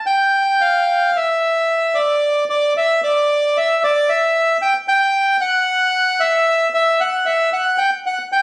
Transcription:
bandoneon
0.06 G5
0.61 F5
1.16 E5
1.95 D5
2.50 D5
2.77 E5
3.04 D5
3.57 E5
3.84 D5
4.09 E5
4.62 G5
4.88 G5
5.41 F#5
6.20 E5
6.74 E5
7.00 F#5
7.26 E5
7.53 F#5
7.78 G5
8.06 F#5
8.32 G5

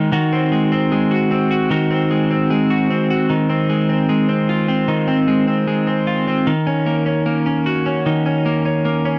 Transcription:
clean electric guitar
Already playing: D#3 G#3
0.12 D#3 F#4
0.33 C4
0.52 G#3
0.72 C4
0.92 G#3
1.11 F#4
1.31 C4
1.51 F#4
1.70 D#3 F#4
1.91 C4
2.11 G#3
2.31 C4
2.50 G#3
2.70 F#4
2.90 C4
3.11 F#4
3.30 D#3
3.50 C4
3.70 G#3
3.89 C4
4.09 G#3
4.29 C4
4.49 F4
4.68 C4
4.88 D#3
5.08 C4
5.28 G#3
5.47 C4
5.67 G#3
5.87 C4
6.07 F4
6.28 C4
6.47 D#3
6.67 C#4
6.86 A#3
7.06 C#4
7.26 A#3
7.46 C#4
7.66 F#4
7.86 C#4
8.06 D#3
8.26 C#4
8.46 A#3
8.65 C#4
8.85 A#3
9.05 C#4

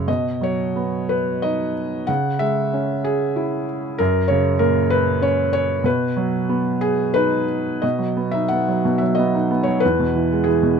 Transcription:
felt piano
0.08 B2 D#5
0.41 F#3 C#5
0.76 B3
1.09 B4
1.42 D#4 D#5
2.07 C#3 F#5
2.39 G#3 E5
2.73 C#4
3.04 G#4
3.36 E4
3.98 F#2 A#4
4.28 C#3 C#5
4.59 A#2 A#4
4.90 B4
5.22 C#4 C#5
5.53 C#5
5.84 B2 B4
6.17 F#3
6.49 B3
6.81 G#4
7.14 D#4 B4
7.82 B2 D#5
7.99 F#3
8.17 B3
8.31 D#4 E5
8.48 B3 F#5
8.68 F#3
8.85 B2
8.98 F#3 E5
9.15 D#5
9.19 B3
9.35 D#4
9.51 B3
9.63 C#5
9.67 F#3
9.80 B4
9.85 E2
9.99 B2
10.15 E3
10.32 G#3
10.44 E3 G#4
10.63 B2

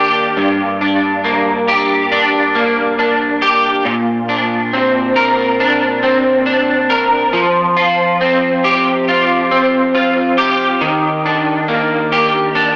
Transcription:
clean electric guitar
Already playing: D#3 A#3 D4 G4
0.37 G2
0.81 D4
1.24 A#3
1.68 G4
2.12 D4
2.55 A#3
2.99 D4
3.42 G4
3.85 A#2
4.29 D4
4.73 C4
5.16 A#4
5.60 D4
6.03 C4
6.46 D4
6.90 A#4
7.33 F3
7.77 F4
8.21 C4
8.64 G4
9.08 F4
9.51 C4
9.95 F4
10.38 G4
10.81 D#3
11.26 D4
11.68 A#3
12.12 G4
12.55 D4

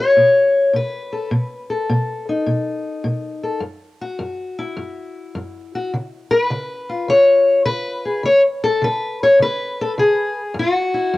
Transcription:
steel-string acoustic guitar
Already playing: B2 A3 F#4
0.00 C#5
0.17 B2
0.73 B2 B4
1.13 A4
1.31 B2
1.70 A4
1.89 B2
2.29 D#4
2.46 B2
3.04 B2
3.43 A4
3.60 F#2
4.01 F#4
4.19 F#2
4.59 E4
4.77 F#2
5.35 F#2
5.75 F#4
5.94 C#3
6.31 B4
6.50 C#3
6.89 F4
7.08 C#3 C#5
7.65 C#3 B4
8.05 G#4
8.23 C#3 C#5
8.64 A4
8.82 C#3 B4
9.23 C#5
9.39 C#3 B4
9.81 A4
9.98 C#3 G#4
10.54 F#2
10.59 F#4
10.94 E4
11.14 F#2

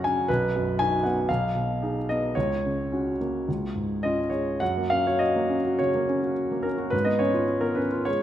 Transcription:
grand piano
Already playing: F#2 C#3 C#4 F#4 F#5 A#5
0.04 C#4 G#5
0.28 B1 B4
0.56 F#2
0.79 D#4 F#4 G#5
1.03 B3 F#5
1.29 B1 F5
1.55 B2
1.82 D#4 G#4
2.09 B3 D#5
2.35 C#2 C#5
2.65 C#3
2.92 C#4 F#4
3.20 A#3
3.48 C#2
3.75 G#2
4.03 C#4 F4 D#5
4.30 G#3 C#5
4.60 F#2 F#5
4.77 A#3
4.90 C#4 F5
5.07 F#4 C#5
5.19 D#5
5.36 A#3
5.50 C#4
5.65 F#4
5.79 C#3 C#5
5.95 A#3
6.09 C#4
6.23 F#4
6.52 A#3
6.63 C#4 A#4
6.78 F#4
6.90 G#2 B4
7.05 B3 D#5
7.19 C#4 C#5
7.34 F4
7.61 B3 A#4
7.75 C#4 B4
7.92 F4
8.05 G#3 C#5

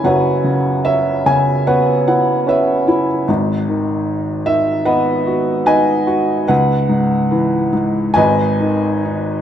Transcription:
felt piano
Already playing: B3 C#4 E4 B4 C#5 F#5 G#5
0.04 F#1 F#2 B4 C#5 F#5
0.44 C#3
0.85 C#4 E5
1.26 C#3 G#5
1.67 B3 B4 C#5 F#5
2.08 E4 F#5
2.47 C#4 B4 C#5 E5
2.88 E4
3.28 G#1 G#2
3.68 D#3
4.46 D#3 E5
4.85 B3 B4 D#5 F#5
5.27 F#4
5.66 D#4 B4 D#5 G#5
6.07 F#4
6.48 C#2 B4 F#5
6.89 G#2
7.31 E3
7.73 G#2
8.14 G#1 G#2 B4 D#5 G#5
8.60 D#3
9.05 D#4

